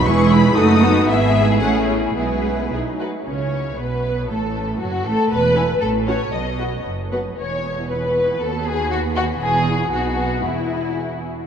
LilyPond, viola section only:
\new Staff \with { instrumentName = "Viola section" } { \time 2/4 \key e \major \tempo 4 = 116 << { e'4 dis'4 | b4 cis'4 | b4 dis'8 r8 | cis'4 b4 |
a4 fis8 a8 | r8 e'16 r8. fis'16 r16 | r8 fis'16 r8. fis'16 r16 | e'2 |
fis'2 | e'4 dis'4 | e'4. r8 | } \\ { gis4 a8 b8~ | b4 a4 | gis4 fis8 r8 | r2 |
r2 | r8 b16 r8. cis'16 r16 | r8 b16 r8. b16 r16 | b2~ |
b2 | b2~ | b4. r8 | } >> }